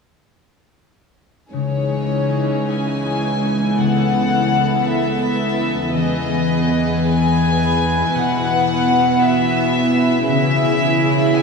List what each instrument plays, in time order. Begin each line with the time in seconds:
1.52 cello section C#2, harp C#3, viola section E3 C#4, violin section D#4 G#4 C#5
1.92 harp G#3
2.30 harp D#5
2.67 harp G#4, violin section G#5
3.06 harp D#5
3.42 harp C#4
3.77 harp C#3, viola section B3, violin section E4 A4 F#5
4.13 harp A3
4.49 harp B4
4.85 harp A4, violin section E5
5.21 harp B4
5.57 harp E4
5.93 cello section E2, harp E3, viola section E3, violin section G#4 B4 D#5
6.30 harp B3
6.69 harp B4
7.07 harp G#4, violin section G#5
7.43 harp B4
7.79 harp G#4
8.15 harp B2, cello section B2, viola section B3, violin section E4 F#5
8.50 harp B3
8.85 harp B4
9.22 harp F#4, violin section E5
9.57 harp B4
10.28 harp C#3, cello section C#3, viola section E3 E4, violin section G#4 E5
10.64 harp G#3
11.00 harp E5
11.35 violin section G#5